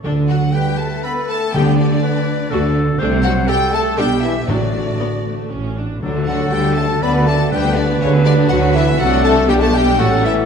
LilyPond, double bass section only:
\new Staff \with { instrumentName = "Double bass section" } { \clef bass \time 3/4 \key d \major \tempo 4 = 121 d,4 r2 | d,4 r4 d,4 | c,4 r4 b,,4 | a,,4 r4 a,,4 |
d,4 d,4 d,4 | d,4 d,4 d,4 | c,4 b,,4 a,,4 | }